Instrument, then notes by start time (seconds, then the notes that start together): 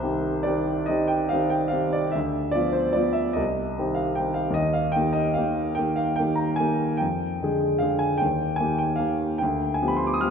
grand piano
Already playing: C2 C5
0.03 D#3 C4 G4
0.43 D#3 C4 G4 D5
0.86 D#3 C4 D#5
0.90 G4
1.08 G5
1.29 D#3 C4 F5
1.33 G4
1.50 G5
1.68 D#3 C4 F5
1.72 G4
1.93 D5
2.11 D2 E5
2.51 F3 B3 D5
2.56 F4
2.73 C5
2.93 F3 B3 F4 D5
3.13 E5
3.33 C2 D#5
3.78 D#3 C4 G4
3.95 F5
4.15 G5
4.20 D#3 C4 G4
4.34 F5
4.50 D#2 D#5
4.73 F5
4.92 G5
4.96 D#3 A#3 G4
5.13 D#5
5.34 D#3 A#3 G4 F5
5.75 D#3 A#3 G5
5.79 G4
5.96 F5
6.16 D#3 A#3 G5
6.21 G4
6.36 A#5
6.56 D#3 G#5
6.60 A#3 G4
6.97 F2 G5
7.42 D3 G#3 G#4
7.79 D3 G#3 G#4 F5
7.99 G#5
8.18 G5
8.22 D#2
8.56 D#3 G#5
8.60 A#3 G4
8.78 G5
8.96 D#3 A#3 F5
9.00 G4
9.38 D2 G5
9.74 G#5
9.82 F3 B3 G4
9.88 B5
9.97 C6
10.07 D6
10.14 D#6
10.21 F3 B3 G4 F6